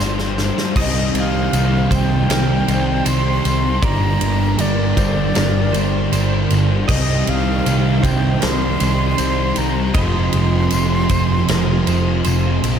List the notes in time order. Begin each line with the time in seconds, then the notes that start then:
Already playing: G2 D3 G3 C4 D4 G4 C5 G5 C6
0.00 G1 G2 D3 G3 C5, snare, tambourine
0.19 snare
0.36 D3 G3, snare, tambourine
0.58 snare
0.74 C2 C3 D#3 G3 C4 D#4 C5 D#5 G5, kick, crash
0.79 G4 D#5
1.15 C2, ride
1.19 F5
1.52 C2 C3 G3 C4, ride, tambourine
1.90 C2 G3 C4 C5, kick, ride, tambourine
1.95 G5
2.28 C2 C3 G3 C4 A#4, snare, ride, tambourine
2.67 C2 C5, ride, tambourine
3.05 C2 C3 G3 C4 C5 C6, ride, tambourine
3.45 C2, ride, tambourine
3.82 G1 G2 D3 G3 A#3 D4 G4 A#4 D5 G5 A#5, kick, ride
4.21 G1, ride
4.58 G1 G2 D3 D5, ride, tambourine
4.62 G3
4.96 G1 D3 G3 C5, kick, ride, tambourine
5.35 G1 G2 D3 G3 A#4, snare, ride, tambourine
5.73 G1 C5, ride, tambourine
6.11 G1 G2 D3 G3 C5, ride, tambourine
6.50 G1, ride, tambourine
6.87 C2 C3 D#3 G3 C4 D#4 G4 C5 D#5 G5, kick, crash
6.91 C4
7.27 C2 F5, ride
7.64 C2 C3 G3 C4, ride, tambourine
8.03 C2 G3 C4 C5 G5, kick, ride, tambourine
8.40 C2 C3 G3 A#4 C6, snare, ride, tambourine
8.45 C4
8.80 C2 C5, ride, tambourine
9.18 C2 C3 G3 C4 C5, ride, tambourine
9.56 C2 A#5, ride, tambourine
9.94 F1 F2 C3 F3 G#3 C4 F4 D#5 G#5 C6, kick, ride, tambourine
9.98 F3
10.33 F1, ride, tambourine
10.70 F1 F2 C3, ride, tambourine
10.75 F3
11.09 F1 C3 F3 C5, kick, ride, tambourine
11.48 F1 F2 C3 F3 A#4, snare, ride, tambourine
11.87 F1 C5, ride, tambourine
12.24 F1 F2 C3 F3 C5, ride, tambourine
12.64 A#1, ride, tambourine